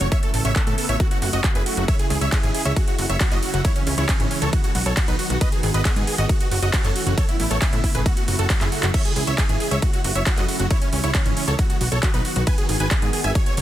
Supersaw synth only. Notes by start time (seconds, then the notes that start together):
0.01 C#5
0.12 C#5 E5
0.23 A4
0.34 A4
0.45 C#5 E5
0.56 A4
0.67 A4
0.78 A4
0.89 C#5 E5
1.00 F#4
1.11 F#4
1.22 F#4
1.33 F#4 D#5
1.44 F#4
1.55 G#4 B4
1.66 F#4
1.77 F#4
1.88 C#5 E5
1.99 G#4
2.10 G#4
2.21 C#5 E5
2.33 G#4
2.43 G#4
2.55 G#4
2.65 C#5 E5
2.76 F#4
2.87 F#4
2.98 F#4
3.09 C#5 E5
3.21 F#4
3.32 F#4 D#5
3.43 F#4
3.54 F#4
3.64 E4 C#5
3.76 C#4
3.87 C#4
3.98 E4 C#5
4.09 C#4
4.20 C#4
4.31 C#4
4.42 A4 C#5
4.53 F#4
4.64 F#4
4.75 F#4
4.86 A4 C#5
4.97 F#4
5.08 D#4 B4
5.19 F#4
5.30 F#4
5.41 B4 D#5
5.52 G#4
5.63 G#4
5.74 B4 D#5
5.85 G#4
5.96 G#4
6.07 G#4
6.18 F#4 D#5
6.29 F#4
6.40 F#4
6.51 F#4
6.62 F#4 D#5
6.73 F#4
6.85 A4 C#5
6.96 F#4
7.07 F#4
7.18 A4 C#5
7.29 E4
7.40 E4
7.51 A4 C#5
7.62 E4
7.73 E4
7.84 E4
7.95 G#4 B4
8.06 F#4
8.17 F#4
8.28 F#4
8.39 F#4 A4
8.50 F#4
8.61 E4 G#4
8.72 F#4
8.83 F#4
8.94 C#5 E5
9.05 G#4
9.16 G#4
9.27 C#5 E5
9.38 G#4
9.49 G#4
9.60 G#4
9.71 C#5 E5
9.82 F#4
9.93 F#4
10.04 F#4
10.15 C#5 E5
10.26 F#4
10.37 F#4 D#5
10.48 F#4
10.59 F#4
10.70 E4 C#5
10.82 C#4
10.93 C#4
11.04 E4 C#5
11.14 C#4
11.25 C#4
11.36 C#4
11.48 A4 C#5
11.58 F#4
11.70 F#4
11.81 F#4
11.92 A4 C#5
12.03 F#4
12.14 D#4 B4
12.25 F#4
12.36 F#4
12.47 B4 G#5
12.58 G#4
12.69 G#4
12.80 B4 G#5
12.91 G#4
13.02 G#4
13.13 G#4
13.24 E5 G#5
13.35 C#5
13.46 C#5
13.57 C#5